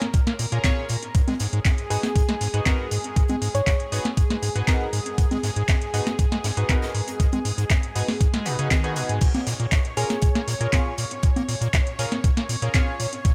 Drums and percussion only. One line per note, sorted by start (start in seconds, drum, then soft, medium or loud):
0.02 snare medium
0.02 closed hi-hat soft
0.02 high conga soft
0.14 kick loud
0.14 closed hi-hat medium
0.27 snare medium
0.27 closed hi-hat soft
0.39 closed hi-hat medium
0.39 open hi-hat loud
0.52 closed hi-hat medium
0.64 kick loud
0.64 snare loud
0.64 clap loud
0.64 closed hi-hat medium
0.64 high conga medium
0.89 closed hi-hat medium
0.89 open hi-hat loud
1.03 closed hi-hat medium
1.15 kick loud
1.15 closed hi-hat medium
1.28 snare soft
1.28 closed hi-hat soft
1.28 high conga medium
1.40 snare medium
1.40 closed hi-hat medium
1.40 open hi-hat loud
1.53 closed hi-hat soft
1.65 kick loud
1.65 snare loud
1.65 clap loud
1.65 closed hi-hat medium
1.78 closed hi-hat soft
1.90 closed hi-hat medium
1.90 open hi-hat loud
2.03 snare medium
2.03 closed hi-hat medium
2.03 closed hi-hat soft
2.03 high conga soft
2.16 kick loud
2.16 closed hi-hat medium
2.29 snare medium
2.29 closed hi-hat soft
2.41 snare soft
2.41 closed hi-hat medium
2.41 open hi-hat loud
2.54 closed hi-hat medium
2.66 kick loud
2.66 snare loud
2.66 clap loud
2.66 closed hi-hat medium
2.66 high conga medium
2.91 closed hi-hat medium
2.91 open hi-hat medium
3.04 closed hi-hat medium
3.16 kick loud
3.16 closed hi-hat medium
3.28 closed hi-hat soft
3.28 high conga medium
3.42 closed hi-hat medium
3.42 open hi-hat loud
3.55 closed hi-hat soft
3.66 kick loud
3.66 snare loud
3.66 clap loud
3.66 closed hi-hat medium
3.80 closed hi-hat soft
3.92 closed hi-hat medium
3.92 open hi-hat loud
4.05 snare medium
4.05 closed hi-hat medium
4.05 high conga soft
4.17 kick loud
4.17 closed hi-hat medium
4.30 snare medium
4.30 closed hi-hat soft
4.42 closed hi-hat medium
4.42 open hi-hat loud
4.56 closed hi-hat medium
4.68 kick loud
4.68 snare loud
4.68 clap loud
4.68 closed hi-hat medium
4.68 closed hi-hat loud
4.68 high conga medium
4.93 closed hi-hat medium
4.93 open hi-hat loud
5.06 closed hi-hat medium
5.18 kick loud
5.18 closed hi-hat medium
5.18 closed hi-hat loud
5.31 snare soft
5.31 closed hi-hat soft
5.31 high conga medium
5.43 snare medium
5.43 closed hi-hat medium
5.43 open hi-hat loud
5.56 closed hi-hat medium
5.68 kick loud
5.68 snare loud
5.68 clap loud
5.68 closed hi-hat medium
5.82 closed hi-hat soft
5.94 closed hi-hat medium
5.94 open hi-hat loud
6.07 snare medium
6.07 closed hi-hat soft
6.07 closed hi-hat medium
6.07 high conga soft
6.19 kick loud
6.19 closed hi-hat medium
6.32 snare medium
6.32 closed hi-hat soft
6.44 snare loud
6.44 closed hi-hat medium
6.44 open hi-hat loud
6.57 closed hi-hat medium
6.69 kick loud
6.69 clap loud
6.69 closed hi-hat medium
6.69 high conga medium
6.82 snare loud
6.82 closed hi-hat medium
6.95 open hi-hat medium
7.08 closed hi-hat medium
7.20 kick loud
7.20 closed hi-hat medium
7.32 closed hi-hat soft
7.32 high conga medium
7.45 closed hi-hat medium
7.45 open hi-hat loud
7.58 closed hi-hat medium
7.58 closed hi-hat soft
7.69 kick loud
7.69 snare loud
7.69 clap loud
7.69 closed hi-hat medium
7.69 closed hi-hat loud
7.83 closed hi-hat soft
7.96 closed hi-hat medium
7.96 open hi-hat loud
8.08 snare medium
8.08 open hi-hat medium
8.08 high conga soft
8.21 kick loud
8.21 closed hi-hat medium
8.34 snare medium
8.34 closed hi-hat soft
8.46 closed hi-hat medium
8.46 open hi-hat loud
8.59 closed hi-hat medium
8.71 kick loud
8.71 snare loud
8.71 clap loud
8.71 closed hi-hat medium
8.71 high conga medium
8.84 closed hi-hat soft
8.96 closed hi-hat medium
8.96 open hi-hat loud
9.09 closed hi-hat medium
9.21 kick loud
9.21 closed hi-hat loud
9.21 closed hi-hat medium
9.21 crash medium
9.34 snare soft
9.34 closed hi-hat soft
9.34 high conga medium
9.47 snare medium
9.47 closed hi-hat medium
9.47 open hi-hat loud
9.60 closed hi-hat medium
9.72 kick loud
9.72 snare loud
9.72 clap loud
9.72 closed hi-hat medium
9.85 closed hi-hat soft
9.97 closed hi-hat medium
9.97 open hi-hat loud
10.10 snare medium
10.10 closed hi-hat soft
10.10 closed hi-hat medium
10.10 high conga soft
10.22 kick loud
10.22 closed hi-hat loud
10.22 closed hi-hat medium
10.35 snare medium
10.35 closed hi-hat soft
10.48 snare soft
10.48 closed hi-hat medium
10.48 open hi-hat loud
10.61 closed hi-hat medium
10.72 kick loud
10.72 snare loud
10.72 clap loud
10.72 closed hi-hat medium
10.72 high conga medium
10.98 closed hi-hat medium
10.98 open hi-hat loud
11.11 closed hi-hat medium
11.23 kick loud
11.23 closed hi-hat medium
11.36 closed hi-hat soft
11.36 high conga medium
11.49 closed hi-hat medium
11.49 open hi-hat loud
11.62 closed hi-hat medium
11.62 closed hi-hat soft
11.73 kick loud
11.73 snare loud
11.73 clap loud
11.73 closed hi-hat loud
11.73 closed hi-hat medium
11.87 closed hi-hat soft
11.99 closed hi-hat medium
11.99 open hi-hat loud
12.12 snare medium
12.12 closed hi-hat medium
12.12 high conga soft
12.24 kick loud
12.24 closed hi-hat medium
12.37 snare medium
12.37 closed hi-hat soft
12.49 closed hi-hat medium
12.49 open hi-hat loud
12.62 closed hi-hat medium
12.74 kick loud
12.74 snare loud
12.74 clap loud
12.74 closed hi-hat medium
12.74 high conga medium
13.00 closed hi-hat medium
13.00 open hi-hat loud
13.13 closed hi-hat medium
13.25 kick loud
13.25 closed hi-hat medium